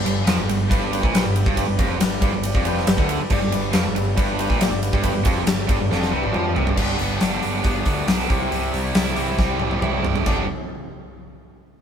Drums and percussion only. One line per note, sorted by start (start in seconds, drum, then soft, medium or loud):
0.06 ride medium
0.27 snare loud
0.27 ride medium
0.49 ride medium
0.71 kick loud
0.71 ride medium
0.93 ride medium
1.03 kick medium
1.15 snare loud
1.15 ride medium
1.36 ride medium
1.46 kick loud
1.57 kick medium
1.57 ride medium
1.79 kick loud
1.79 ride medium
2.00 snare loud
2.00 ride loud
2.22 kick loud
2.22 ride medium
2.43 ride medium
2.55 kick loud
2.65 ride medium
2.77 snare soft
2.87 snare loud
2.87 ride medium
2.98 kick loud
3.09 ride medium
3.30 kick loud
3.30 crash medium
3.52 ride medium
3.73 snare loud
3.73 ride medium
3.96 ride medium
4.17 kick medium
4.17 ride medium
4.39 ride medium
4.50 kick medium
4.50 snare soft
4.61 snare loud
4.61 ride loud
4.83 ride medium
4.93 kick loud
5.03 kick medium
5.03 ride medium
5.25 kick loud
5.25 ride medium
5.47 snare loud
5.47 ride loud
5.69 kick loud
5.69 ride medium
5.92 snare medium
6.02 snare medium
6.23 high tom medium
6.34 mid tom medium
6.56 floor tom medium
6.67 floor tom medium
6.77 kick medium
6.77 crash loud
6.99 open hi-hat soft
7.21 snare loud
7.21 open hi-hat medium
7.43 open hi-hat medium
7.64 kick loud
7.64 open hi-hat medium
7.86 kick medium
7.86 open hi-hat medium
8.08 snare loud
8.08 open hi-hat medium
8.30 kick loud
8.30 open hi-hat medium
8.52 open hi-hat medium
8.74 open hi-hat medium
8.95 snare loud
8.95 open hi-hat medium
9.16 open hi-hat medium
9.38 kick loud
9.38 snare medium
9.60 high tom medium
9.71 high tom medium
9.82 mid tom medium
10.04 floor tom medium
10.16 floor tom loud
10.26 kick loud
10.26 crash medium